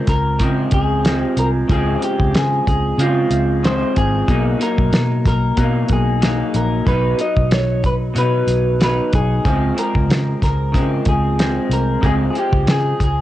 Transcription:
Already playing: clean electric guitar F3 G#3 C4
0.07 fingered electric bass C#2, clean electric guitar A#4, kick, snare, closed hi-hat
0.39 clean electric guitar C#3 F3 G#3 C4, fingered electric bass C#3, kick, closed hi-hat
0.71 fingered electric bass C#2, clean electric guitar G#4, kick, closed hi-hat
1.05 clean electric guitar F3 G#3 C4, snare, closed hi-hat
1.21 clean electric guitar G4
1.37 fingered electric bass C2, clean electric guitar A#4, closed hi-hat
1.68 fingered electric bass C#2, clean electric guitar C#3 F3 G#4, kick, closed hi-hat
1.72 clean electric guitar G#3 C4
2.02 clean electric guitar G4, closed hi-hat
2.20 fingered electric bass C#2, kick
2.34 fingered electric bass C#3, clean electric guitar G#4, snare, closed hi-hat
2.67 fingered electric bass C#2, clean electric guitar G#4, kick, closed hi-hat
2.98 fingered electric bass C#3, clean electric guitar C#3 F3 G#3 C4 F4, closed hi-hat
3.30 fingered electric bass C#2, closed hi-hat
3.63 clean electric guitar C#3 F3 G#3 C4 C5, snare, closed hi-hat
3.96 fingered electric bass G#1, clean electric guitar G#4, kick, closed hi-hat
4.28 fingered electric bass B1, clean electric guitar B2 F#3 A#3 D#4, kick, closed hi-hat
4.59 clean electric guitar A#3 D#4 A#4, closed hi-hat
4.63 clean electric guitar F#3
4.78 fingered electric bass B1, kick
4.92 fingered electric bass B2, snare, closed hi-hat
5.25 fingered electric bass B1, clean electric guitar A#4, kick, snare, closed hi-hat
5.57 clean electric guitar B2 F#3 A#3 D#4, fingered electric bass B2, kick, closed hi-hat
5.89 fingered electric bass B1, kick, closed hi-hat
5.93 clean electric guitar G#4
6.22 clean electric guitar F#3 A#3 D#4, snare, closed hi-hat
6.54 fingered electric bass A#1, clean electric guitar A#4, closed hi-hat
6.86 fingered electric bass B1, clean electric guitar B2 F#3 D#4 B4, kick, closed hi-hat
7.18 clean electric guitar F#3 D#4 D#5, closed hi-hat
7.37 fingered electric bass B1, kick
7.51 clean electric guitar C#5, snare, closed hi-hat
7.84 clean electric guitar B4, kick, closed hi-hat
8.14 clean electric guitar B2 F#3, fingered electric bass B2, closed hi-hat
8.18 clean electric guitar D#4 B4
8.47 fingered electric bass B1, closed hi-hat
8.80 clean electric guitar B2 F#3 D#4 B4, snare, closed hi-hat
9.13 fingered electric bass B1, clean electric guitar G#4, kick, closed hi-hat
9.45 fingered electric bass C#2, clean electric guitar C#3 F3 G#3 C4, kick, closed hi-hat
9.76 clean electric guitar F3 G#3 C4 A#4, closed hi-hat
9.95 fingered electric bass C#2, kick
10.08 fingered electric bass C#3, snare, closed hi-hat
10.42 fingered electric bass C#2, clean electric guitar A#4, kick, snare, closed hi-hat
10.72 clean electric guitar C#3 F3 G#3 C4, fingered electric bass C#3, kick, closed hi-hat
11.05 fingered electric bass C#2, clean electric guitar G#4, kick, closed hi-hat
11.39 clean electric guitar F3 G#3 C4, snare, closed hi-hat
11.69 fingered electric bass C2, clean electric guitar A#4, closed hi-hat
12.01 fingered electric bass C#2, clean electric guitar C#3 F3 G#3 C4, kick, closed hi-hat
12.05 clean electric guitar G#4
12.30 clean electric guitar C4 G#4
12.35 clean electric guitar F3 G#3 G4, closed hi-hat
12.52 fingered electric bass C#2, kick
12.67 fingered electric bass C#3, snare, closed hi-hat
12.71 clean electric guitar G#4
13.00 fingered electric bass C#2, kick, closed hi-hat
13.04 clean electric guitar G#4

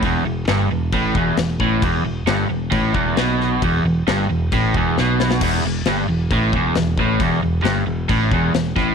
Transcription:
0.03 fingered electric bass E1, overdriven electric guitar E2, kick, crash
0.25 fingered electric bass E1, overdriven electric guitar E2
0.47 fingered electric bass G1, overdriven electric guitar G2, snare, crash
0.71 fingered electric bass E1, overdriven electric guitar E2
0.92 fingered electric bass A1, overdriven electric guitar A2, kick, crash
1.15 fingered electric bass E1, overdriven electric guitar E2, kick
1.37 fingered electric bass E1, overdriven electric guitar E2, snare, crash
1.59 fingered electric bass A1, overdriven electric guitar A2, kick
1.82 fingered electric bass E1, overdriven electric guitar E2, kick, crash
2.04 fingered electric bass E1, overdriven electric guitar E2
2.27 fingered electric bass G1, overdriven electric guitar G2, snare, crash
2.50 fingered electric bass E1, overdriven electric guitar E2
2.72 fingered electric bass A1, overdriven electric guitar A2, kick, crash
2.94 fingered electric bass E1, overdriven electric guitar E2, kick
3.16 fingered electric bass B1, overdriven electric guitar B2, snare, crash
3.41 snare
3.62 fingered electric bass E1, overdriven electric guitar E2, kick, crash
3.83 fingered electric bass E1, overdriven electric guitar E2
4.07 fingered electric bass G1, overdriven electric guitar G2, snare, crash
4.30 fingered electric bass E1, overdriven electric guitar E2
4.52 fingered electric bass A1, overdriven electric guitar A2, kick, crash
4.74 fingered electric bass E1, overdriven electric guitar E2, kick
4.98 fingered electric bass B1, overdriven electric guitar B2, snare
5.20 snare
5.31 snare
5.41 fingered electric bass E1, overdriven electric guitar E2, kick, crash
5.65 fingered electric bass E1, overdriven electric guitar E2
5.85 fingered electric bass G1, overdriven electric guitar G2, snare, crash
6.09 fingered electric bass E1, overdriven electric guitar E2
6.31 fingered electric bass A1, overdriven electric guitar A2, kick, crash
6.52 fingered electric bass E1, overdriven electric guitar E2, kick
6.75 fingered electric bass E1, overdriven electric guitar E2, snare, crash
6.97 fingered electric bass A1, overdriven electric guitar A2, kick
7.20 fingered electric bass E1, overdriven electric guitar E2, kick, crash
7.43 fingered electric bass E1, overdriven electric guitar E2
7.63 fingered electric bass G1, overdriven electric guitar G2, snare, crash
7.87 fingered electric bass E1, overdriven electric guitar E2
8.09 fingered electric bass A1, overdriven electric guitar A2, kick, crash
8.31 fingered electric bass E1, overdriven electric guitar E2, kick
8.54 fingered electric bass E1, overdriven electric guitar E2, snare, crash
8.76 fingered electric bass A1, overdriven electric guitar A2, kick, snare

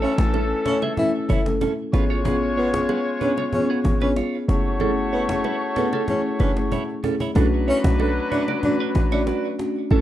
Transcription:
Already playing: horn section E3 C#4 A4, marimba A3 C#4 E4 A4, downlifter
0.01 tenor saxophone C#4, clean electric guitar E4 C#5, cajon slap
0.18 808-style bass A1, marimba A3 C#4 E4 A4, cajon slap, low bongo
0.34 clean electric guitar C#4 A4, cajon slap, high bongo
0.50 cajon slap
0.65 marimba A3 C#4 E4 A4, tenor saxophone C#4, clean electric guitar E4 C#5, cajon bass, cajon slap
0.82 clean electric guitar G#4 E5, cajon slap, high bongo, low bongo
0.97 marimba A3 C#4 E4 A4, tenor saxophone E4, cajon bass, low conga
1.14 cajon slap
1.29 808-style bass F#1, clean electric guitar E4 C#5, tenor saxophone E4, cajon bass, low conga
1.46 marimba A3 C#4 E4 A4, cajon slap, low bongo
1.61 clean electric guitar C#4 A4, cajon bass, high bongo
1.78 cajon slap
1.93 808-style bass G#1, horn section G#3 F4 C#5, marimba B3 C#4 F4 G#4, clean electric guitar F4 B4, cajon slap
2.09 clean electric guitar F4 C#5, cajon slap
2.25 marimba B3 C#4 F4 G#4, clean electric guitar B3 G#4, cajon bass, low conga
2.41 cajon slap
2.57 tenor saxophone B3, clean electric guitar F4 C#5, cajon slap
2.73 marimba B3 C#4 F4 G#4, cajon bass, cajon slap, low bongo
2.89 clean electric guitar B3 G#4, cajon slap, high bongo
3.06 cajon slap
3.20 marimba B3 C#4 F4 G#4, tenor saxophone C#4, clean electric guitar D4 B4, cajon bass
3.37 clean electric guitar F4 C#5, cajon slap, high bongo, low bongo
3.52 marimba B3 C#4 F4 G#4, tenor saxophone C#4, cajon bass, low conga
3.70 clean electric guitar B3 G#4, cajon slap
3.84 808-style bass G#1, cajon bass, cajon slap, low conga
4.01 marimba B3 C#4 F4 G#4, tenor saxophone C#4, clean electric guitar D4 B4, cajon slap, low bongo
4.16 clean electric guitar F4 C#5, cajon slap, high bongo
4.34 cajon slap
4.48 808-style bass F#1, marimba A3 C#4 E4 G#4, horn section A3 F#4 C#5, cajon slap
4.64 cajon slap
4.80 marimba A3 C#4 E4 G#4, clean electric guitar C#4 A4, cajon slap, low conga
4.96 cajon slap
5.12 tenor saxophone B3, clean electric guitar E4 C#5, cajon slap
5.29 marimba A3 C#4 E4 G#4, cajon bass, cajon slap, low bongo
5.44 clean electric guitar E4 B4, cajon slap, high bongo
5.61 cajon slap
5.76 marimba A3 C#4 E4 G#4, tenor saxophone B3, clean electric guitar C#4 A4, cajon bass, cajon slap
5.93 clean electric guitar C#4 A4, cajon slap, low bongo
6.08 marimba A3 C#4 E4 G#4, tenor saxophone C#4, cajon bass, cajon slap, low conga
6.25 cajon slap
6.39 808-style bass F#1, tenor saxophone C#4, clean electric guitar D4 B4, cajon slap, low conga
6.56 marimba A3 C#4 E4 G#4, cajon slap, low bongo
6.72 clean electric guitar E4 C#5, cajon bass, high bongo
6.89 cajon slap
7.03 marimba A3 C#4 E4 G#4, clean electric guitar C#4 A4, cajon bass
7.20 clean electric guitar E4 C#5, cajon bass, cajon slap, high bongo
7.35 808-style bass B1, horn section F#3 D4 B4, marimba A3 C#4 D4 F#4, clean electric guitar D4 A4, cajon bass, low conga
7.52 cajon slap
7.67 tenor saxophone C#4, clean electric guitar E4 C#5, cajon slap
7.84 808-style bass B1, marimba A3 C#4 D4 F#4, cajon bass, cajon slap, low bongo
8.00 clean electric guitar D4 A4, cajon slap, high bongo
8.16 cajon slap
8.31 marimba A3 C#4 D4 F#4, tenor saxophone D4, clean electric guitar E4 C#5, cajon bass
8.48 clean electric guitar F#4 D5, cajon slap, high bongo, low bongo
8.63 marimba A3 C#4 D4 F#4, tenor saxophone D4, cajon bass, low conga
8.80 clean electric guitar D4 B4, cajon slap
8.95 808-style bass A1, cajon bass, cajon slap, low conga
9.12 marimba A3 C#4 D4 F#4, tenor saxophone D4, clean electric guitar E4 C#5, cajon slap, low bongo
9.27 clean electric guitar F#4 D5, cajon slap, high bongo
9.44 cajon slap
9.59 marimba A3 C#4 D4 F#4, cajon slap
9.75 cajon slap
9.91 808-style bass A1, horn section E3 C#4 A4, marimba A3 C#4 E4 A4, clean electric guitar C#4 A4, cajon slap, low conga

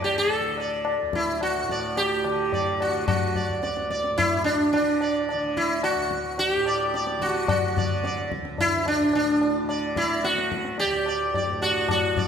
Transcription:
Already playing: tanpura D2 A2 D3
0.02 sitar G4, tabla na
0.18 sitar A4
0.30 tabla na
0.39 tanpura D3
0.58 sitar D5, tabla na
0.85 tabla na
1.02 tanpura D2
1.13 sitar E4, tabla ke
1.41 sitar F#4, tabla na
1.63 tanpura A2
1.69 sitar D5, tabla ke
1.97 sitar G4, tabla tin
2.24 tanpura D3, tabla na
2.52 sitar D5, tabla tin, tabla ge
2.80 sitar F#4, tabla na
2.86 tanpura D3
3.08 sitar F#4, tabla na, tabla ge
3.35 sitar D5, tabla ge
3.47 tanpura D2
3.63 sitar D5, tabla te
3.77 tabla te
3.90 sitar D5, tabla ke
4.04 tabla te
4.11 tanpura A2
4.18 sitar E4, tabla tin, tabla ge
4.44 sitar D4, tabla na
4.72 tanpura D3, sitar D4, tabla na
5.01 sitar D5, tabla na
5.29 sitar D5, tabla na
5.33 tanpura D3
5.57 sitar E4, tabla ke
5.83 sitar F#4, tabla na
5.95 tanpura D2
6.11 tabla ke
6.38 sitar F#4, tabla tin
6.51 sitar G4
6.56 tanpura A2
6.66 sitar D5, tabla na
6.94 sitar D5, tabla te
7.07 tabla te
7.18 tanpura D3, sitar F#4, tabla ke
7.35 tabla te
7.48 sitar F#4, tabla na, tabla ge
7.77 tanpura D3, sitar D5, tabla ge
8.04 sitar D5, tabla te
8.18 tabla te
8.32 tabla ke
8.41 tanpura D2
8.45 tabla te
8.58 sitar E4, tabla tin, tabla ge
8.86 sitar D4, tabla na
9.02 tanpura A2
9.13 sitar D4, tabla na
9.41 tabla na
9.63 tanpura D3
9.69 sitar D5, tabla na
9.96 sitar E4 D5, tabla ke
10.24 tanpura D3, sitar F#4, tabla te
10.38 tabla te
10.52 tabla ke
10.65 tabla te
10.78 sitar G4 D5, tabla tin
10.85 tanpura D2
11.06 sitar D5, tabla na
11.34 sitar D5, tabla tin, tabla ge
11.47 tanpura A2
11.62 sitar F#4 D5, tabla na
11.89 tanpura A2, sitar F#4, tabla na, tabla ge
12.17 sitar D5, tabla ge

